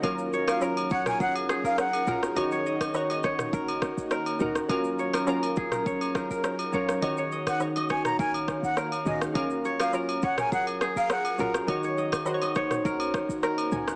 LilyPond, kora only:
\new Staff \with { instrumentName = "Kora" } { \time 4/4 \key fis \major \tempo 4 = 103 r8 cis''16 ais'16 ais'16 r16 cis''16 ais'16 gis'16 r16 gis'16 ais'16 r8 ais'16 r16 | r16 cis''16 dis''16 r8 dis''16 cis''16 r16 ais'8 r8 ais'8 r8 | r8 cis''16 ais'16 ais'16 r16 gis'16 ais'16 cis''16 r16 ais'16 ais'16 r8 cis''16 r16 | r16 cis''16 dis''16 r8 dis''16 cis''16 r16 ais'8 r8 ais'8 r8 |
r8 cis''16 ais'16 ais'16 r16 cis''16 ais'16 gis'16 r16 gis'16 ais'16 r8 ais'16 r16 | r16 cis''16 dis''16 r8 dis''16 cis''16 r16 ais'8 r8 ais'8 r8 | }